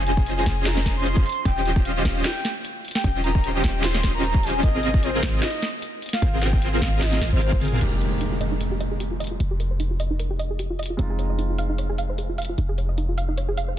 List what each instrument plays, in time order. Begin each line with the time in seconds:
Already playing: 808-style bass F1, supersaw synth C#4 F4 G#4 C5 D#5
0.06 soft synth lead G#5, closed hi-hat
0.17 kick
0.26 closed hi-hat
0.37 soft synth lead G#5
0.46 808-style bass F1, supersaw synth C#4 F4 G#4 D#5, kick, snare, closed hi-hat
0.66 soft synth lead A#5, snare, closed hi-hat
0.77 snare
0.86 kick, snare, closed hi-hat
0.97 soft synth lead C6
1.06 closed hi-hat
1.17 kick
1.26 soft synth lead C6, closed hi-hat
1.29 closed hi-hat
1.32 closed hi-hat
1.45 808-style bass D#1, supersaw synth C#4 F4 G4 C5 D#5, soft synth lead G5, kick, closed hi-hat
1.65 closed hi-hat
1.76 kick
1.85 soft synth lead F5, closed hi-hat
2.05 808-style bass D#1, kick, snare, closed hi-hat
2.25 soft synth lead G5, snare, closed hi-hat
2.45 snare, closed hi-hat
2.65 closed hi-hat
2.85 closed hi-hat
2.88 closed hi-hat
2.91 closed hi-hat
2.95 soft synth lead G5, snare
3.04 808-style bass D#1, supersaw synth C#4 F4 G4 C5 D#5, kick, closed hi-hat
3.24 soft synth lead A#5, closed hi-hat
3.35 kick
3.44 closed hi-hat
3.55 soft synth lead G5
3.64 808-style bass D#1, supersaw synth C#4 F4 G4 C5 D#5, kick, snare, closed hi-hat
3.84 soft synth lead C6, snare, closed hi-hat
3.95 snare
4.03 kick, snare, closed hi-hat
4.14 soft synth lead A#5
4.23 closed hi-hat
4.34 kick
4.43 soft synth lead G#5, closed hi-hat
4.47 closed hi-hat
4.50 closed hi-hat
4.63 808-style bass G#1, supersaw synth C4 A#4, soft synth lead D#5, kick, closed hi-hat
4.83 closed hi-hat
4.94 kick
5.03 soft synth lead C5, closed hi-hat
5.23 808-style bass G#1, supersaw synth F4, kick, snare, closed hi-hat
5.43 soft synth lead D#5, snare, closed hi-hat
5.62 snare, closed hi-hat
5.82 closed hi-hat
6.02 closed hi-hat
6.06 closed hi-hat
6.09 closed hi-hat
6.13 soft synth lead F5, snare
6.22 808-style bass G#1, supersaw synth C4 F4 G#4 A#4 C5, kick, closed hi-hat
6.42 soft synth lead G5, snare, closed hi-hat
6.53 kick
6.62 closed hi-hat
6.73 soft synth lead F5
6.82 808-style bass G#1, supersaw synth C4 F4 G#4 D#5, kick, snare, closed hi-hat
7.02 soft synth lead D#5, snare, closed hi-hat
7.13 snare
7.21 808-style bass G#1, supersaw synth C4 F4 A#4 F5, kick, snare, closed hi-hat
7.32 808-style bass G#1, supersaw synth C4 F4 G#4 A#4 F5, soft synth lead C5
7.41 closed hi-hat
7.52 kick
7.61 soft synth lead G#4, closed hi-hat, high tom
7.65 closed hi-hat
7.68 closed hi-hat
7.72 mid tom
7.79 808-style bass F1, grand piano G#3 A#3 D#4 G4, synth arpeggio sound D#4, closed hi-hat, crash, impact
7.92 synth arpeggio sound G4
8.01 synth arpeggio sound A#4, closed hi-hat
8.12 synth arpeggio sound C5
8.21 synth arpeggio sound D#4, closed hi-hat
8.32 synth arpeggio sound F4
8.41 synth arpeggio sound D#5, closed hi-hat
8.52 synth arpeggio sound D#4
8.61 synth arpeggio sound A#4, closed hi-hat
8.71 synth arpeggio sound G4
8.80 synth arpeggio sound D#5, closed hi-hat
8.91 synth arpeggio sound G#4
9.00 synth arpeggio sound G4, closed hi-hat
9.11 synth arpeggio sound F4
9.20 synth arpeggio sound D#5, closed hi-hat
9.24 closed hi-hat
9.27 closed hi-hat
9.31 synth arpeggio sound F4
9.40 808-style bass F1, synth arpeggio sound D#4, closed hi-hat
9.51 synth arpeggio sound G4
9.60 synth arpeggio sound A#4, closed hi-hat
9.71 synth arpeggio sound C5
9.80 synth arpeggio sound D#4, closed hi-hat
9.91 synth arpeggio sound F4
10.00 synth arpeggio sound D#5, closed hi-hat
10.10 synth arpeggio sound D#4
10.19 synth arpeggio sound A#4, closed hi-hat
10.30 synth arpeggio sound G4
10.39 synth arpeggio sound D#5, closed hi-hat
10.50 synth arpeggio sound G#4
10.59 synth arpeggio sound G4, closed hi-hat
10.70 synth arpeggio sound F4
10.79 synth arpeggio sound D#5, closed hi-hat
10.83 closed hi-hat
10.86 closed hi-hat
10.90 synth arpeggio sound F4
10.97 808-style bass F1, grand piano G#3 C4 D#4 F4, synth arpeggio sound D#4, closed hi-hat
11.10 synth arpeggio sound G#4
11.19 synth arpeggio sound C#5, closed hi-hat
11.30 synth arpeggio sound D#5
11.39 synth arpeggio sound D#4, closed hi-hat
11.50 synth arpeggio sound F4
11.58 synth arpeggio sound F5, closed hi-hat
11.69 synth arpeggio sound D#4
11.78 synth arpeggio sound C#5, closed hi-hat
11.89 synth arpeggio sound G#4
11.98 synth arpeggio sound F5, closed hi-hat
12.09 synth arpeggio sound C5
12.18 synth arpeggio sound G#4, closed hi-hat
12.29 synth arpeggio sound F4
12.38 synth arpeggio sound F5, closed hi-hat
12.42 closed hi-hat
12.45 closed hi-hat
12.49 synth arpeggio sound F4
12.58 808-style bass F1, synth arpeggio sound D#4, closed hi-hat
12.69 synth arpeggio sound G#4
12.78 synth arpeggio sound C#5, closed hi-hat
12.89 synth arpeggio sound D#5
12.98 synth arpeggio sound D#4, closed hi-hat
13.09 synth arpeggio sound F4
13.18 synth arpeggio sound F5, closed hi-hat
13.28 synth arpeggio sound D#4
13.37 synth arpeggio sound C#5, closed hi-hat
13.48 synth arpeggio sound G#4
13.57 synth arpeggio sound F5, closed hi-hat
13.68 synth arpeggio sound C5